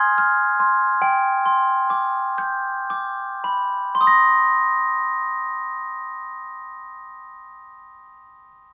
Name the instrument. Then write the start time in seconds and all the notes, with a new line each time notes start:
glockenspiel
Already playing: G#5 C6 F6 G#6
0.18 F6
0.60 C6
1.02 G5
1.46 C6
1.90 D6
2.38 G6
2.90 D6
3.44 B5
3.95 C6
4.01 C6 D#6
4.07 A#6